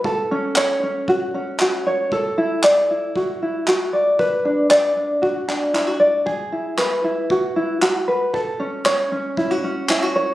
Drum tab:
CP |--x---x-|--x---x-|--x--xx-|--x---x-|
BD |o---o---|o---o---|o---o---|o---o---|

CP |--x---x-|
BD |o---o---|